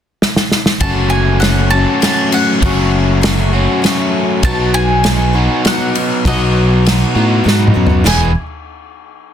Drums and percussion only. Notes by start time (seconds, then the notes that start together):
0.22 snare
0.36 snare
0.51 snare
0.66 snare
0.80 kick, ride
1.42 snare, ride
2.02 snare, ride
2.32 ride
2.62 kick, ride
3.23 snare, ride
3.84 snare, ride
4.43 kick, ride
5.04 snare, ride
5.65 snare, ride
5.95 ride
6.25 kick, ride
6.86 snare, ride
7.48 snare
7.67 mid tom
7.87 floor tom
8.07 snare, splash